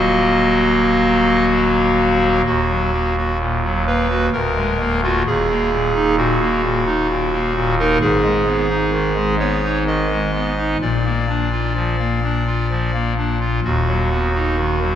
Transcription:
0.00 2.42 D#1 medium
0.00 2.42 D#2 medium
0.00 2.42 F#3 soft
0.00 2.42 A#3 soft
0.00 2.42 F#4 soft
0.00 1.45 D#5 medium
2.46 4.29 D#1 medium
2.46 4.29 D#2 medium
2.46 3.16 F#4 medium
2.70 2.91 F#3 medium
2.93 3.14 A#3 medium
3.18 3.38 F#4 medium
3.40 3.61 A#2 medium
3.63 3.84 F#3 medium
3.87 4.07 A#3 medium
3.87 4.26 B4 medium
4.10 4.29 F#4 medium
4.32 5.23 D1 medium
4.32 5.23 D2 medium
4.32 5.01 A#4 medium
4.56 4.77 G#3 medium
4.80 5.01 A#3 medium
5.03 5.23 F4 medium
5.03 5.23 F#4 medium
5.26 7.98 D#1 medium
5.26 7.98 D#2 medium
5.26 6.15 G#4 medium
5.50 5.70 A#3 medium
5.72 5.92 A#2 medium
5.95 6.15 D#4 medium
6.17 6.38 A#2 medium
6.17 7.75 F#4 loud
6.41 6.62 A#3 medium
6.63 6.84 A#2 medium
6.86 7.07 D#4 medium
7.09 7.30 A#2 medium
7.32 7.53 A#3 medium
7.55 7.76 A#2 medium
7.79 7.98 D#4 medium
7.79 7.98 A#4 loud
8.01 10.76 G#1 medium
8.01 10.76 G#2 medium
8.01 9.35 G#4 loud
8.24 8.44 G#3 medium
8.46 8.67 B3 medium
8.70 8.90 D#4 medium
8.92 9.13 D#3 medium
9.16 9.36 G#3 medium
9.39 9.60 B3 medium
9.39 9.79 C#5 loud
9.64 9.84 D#4 medium
9.87 10.07 D#3 medium
9.87 10.78 D#5 medium
10.11 10.31 G#3 medium
10.34 10.54 B3 medium
10.58 10.77 D#4 medium
10.81 13.60 A#1 medium
10.81 13.60 A#2 medium
10.81 13.13 D5 medium
11.06 11.26 A#3 soft
11.29 11.49 D4 medium
11.53 11.73 F4 medium
11.75 11.96 F3 medium
11.99 12.20 A#3 soft
12.24 12.44 D4 soft
12.47 12.67 F4 soft
12.70 12.91 F3 soft
12.94 13.14 A#3 soft
13.18 13.38 D4 soft
13.41 13.60 F4 medium
13.64 14.95 D#1 medium
13.64 14.95 D#2 medium
13.64 14.95 F#4 medium
13.88 14.08 F#3 soft
14.11 14.32 B3 medium
14.35 14.56 D#4 medium
14.58 14.79 D#3 medium
14.82 14.95 F#3 medium

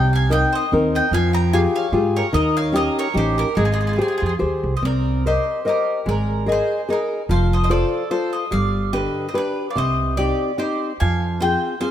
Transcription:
0.00 0.43 C2 medium
0.00 0.30 C3 medium
0.00 0.12 D#5 medium
0.00 0.15 G5 medium
0.13 0.31 F5 medium
0.13 0.32 G#5 medium
0.30 0.63 C4 soft
0.30 0.64 D#4 soft
0.30 0.64 A#4 medium
0.30 0.52 D#5 medium
0.30 0.53 G5 loud
0.53 0.71 C5 medium
0.53 0.72 D#5 medium
0.72 0.99 D#2 medium
0.72 1.05 C4 soft
0.72 1.05 D#4 soft
0.72 1.06 A#4 medium
0.95 1.12 D#5 medium
0.95 1.14 G5 medium
1.11 1.65 F2 medium
1.11 1.53 F3 medium
1.11 1.33 F5 medium
1.11 1.34 G#5 loud
1.33 1.52 G5 medium
1.33 1.52 A#5 loud
1.53 1.86 F4 medium
1.53 1.87 G4 soft
1.53 1.87 G#4 medium
1.53 1.60 F5 medium
1.53 1.59 G#5 loud
1.76 1.93 C#5 medium
1.76 1.93 F5 medium
1.92 2.19 G#2 medium
1.92 2.26 F4 medium
1.92 2.26 G4 soft
1.92 2.27 G#4 medium
2.16 2.34 A#4 medium
2.16 2.34 C#5 medium
2.33 2.87 D#2 loud
2.33 2.74 D#3 medium
2.33 2.56 A#4 medium
2.33 2.55 D#5 loud
2.57 2.75 C#5 medium
2.57 2.74 F5 medium
2.72 3.06 C#4 medium
2.72 3.07 D#4 medium
2.72 3.07 G4 medium
2.72 2.96 D#5 loud
2.77 2.97 A#4 medium
2.99 3.16 A#4 medium
2.99 3.16 C#5 medium
3.14 3.42 A1 loud
3.14 3.48 C#4 soft
3.14 3.48 D#4 soft
3.14 3.48 G4 medium
3.14 3.37 G4 medium
3.14 3.39 C5 medium
3.38 3.55 G4 medium
3.38 3.56 A#4 medium
3.55 3.99 G#1 medium
3.55 3.97 G#3 medium
3.55 3.64 D#4 medium
3.55 3.64 G#4 medium
3.65 3.71 F4 soft
3.65 3.72 G#4 medium
3.72 3.80 F4 soft
3.72 3.79 G#4 medium
3.81 3.88 F4 soft
3.81 3.86 G#4 soft
3.87 3.95 F4 soft
3.87 3.92 G#4 soft
3.93 4.03 F4 soft
3.93 4.00 G#4 soft
3.98 4.32 G4 medium
3.98 4.32 G#4 soft
3.98 4.07 G#4 medium
3.98 4.32 C5 medium
4.04 4.11 F4 soft
4.04 4.16 G#4 soft
4.12 4.19 F4 soft
4.18 4.27 F4 soft
4.18 4.25 G#4 medium
4.22 4.39 F2 medium
4.26 4.35 F4 medium
4.26 4.33 G#4 soft
4.39 4.62 D#2 medium
4.39 4.73 G4 soft
4.39 4.73 G#4 soft
4.39 4.74 C5 medium
4.63 4.81 C2 medium
4.77 4.83 C5 soft
4.77 4.83 D#5 medium
4.82 5.36 C2 medium
4.82 5.23 C4 medium
4.82 5.23 A#4 medium
4.82 5.23 D5 medium
5.26 5.65 G4 medium
5.26 5.59 A#4 soft
5.26 5.58 C5 soft
5.26 5.64 C5 medium
5.26 5.59 D#5 medium
5.65 6.05 G4 medium
5.65 5.98 A#4 soft
5.65 5.99 C5 soft
5.65 5.99 D#5 soft
5.69 6.08 A#4 medium
6.06 6.60 G#1 medium
6.06 6.46 G#3 medium
6.06 6.46 A#4 medium
6.06 6.46 D5 medium
6.46 6.80 G#4 medium
6.46 6.87 G#4 medium
6.46 6.80 A#4 soft
6.46 6.81 D#5 soft
6.52 6.92 C5 medium
6.89 7.19 D#4 medium
6.89 7.21 G#4 medium
6.89 7.22 A#4 soft
6.89 7.22 D#5 medium
6.93 7.20 A#4 medium
7.29 7.82 F1 medium
7.29 7.69 F3 medium
7.29 7.51 C5 medium
7.29 7.53 F5 medium
7.53 7.62 C5 medium
7.53 7.63 D#5 medium
7.63 7.70 C5 medium
7.63 7.70 D#5 medium
7.70 8.02 F4 medium
7.70 8.03 A4 soft
7.70 8.09 A4 medium
7.70 8.03 C5 medium
7.70 8.11 D5 medium
8.11 8.44 F4 soft
8.11 8.44 A4 soft
8.11 8.32 A4 medium
8.11 8.32 C5 medium
8.11 8.44 C5 soft
8.33 8.51 C5 medium
8.33 8.52 D#5 medium
8.51 9.06 G1 medium
8.51 8.91 G3 medium
8.51 8.91 D5 medium
8.51 8.90 F5 medium
8.93 9.27 D3 soft
8.93 9.26 G4 soft
8.93 9.27 B4 medium
8.93 9.26 D#5 medium
9.29 9.34 C5 soft
9.29 9.35 D#5 medium
9.34 9.67 D4 soft
9.34 9.67 G4 soft
9.34 9.68 B4 medium
9.34 9.65 B4 medium
9.38 9.66 D5 medium
9.70 9.76 D5 soft
9.70 9.77 F5 medium
9.75 10.30 C2 medium
9.75 10.16 C3 medium
9.75 10.15 C5 medium
9.75 10.17 D#5 medium
10.17 10.50 C4 soft
10.17 10.50 D#4 soft
10.17 10.51 G4 soft
10.17 10.57 G4 medium
10.17 10.55 D5 medium
10.58 10.91 C4 soft
10.58 10.91 D#4 soft
10.58 10.96 G4 medium
10.58 10.91 G4 medium
10.58 10.97 C5 medium
11.00 11.54 F2 loud
11.00 11.40 F3 medium
11.00 11.38 F5 medium
11.00 11.42 G#5 medium
11.40 11.73 C4 soft
11.40 11.74 F4 soft
11.40 11.74 G#4 medium
11.40 11.78 C5 medium
11.40 11.80 G5 loud
11.80 11.91 C4 soft
11.80 11.91 F4 soft
11.80 11.91 G#4 medium
11.80 11.91 C5 medium
11.80 11.91 F5 medium

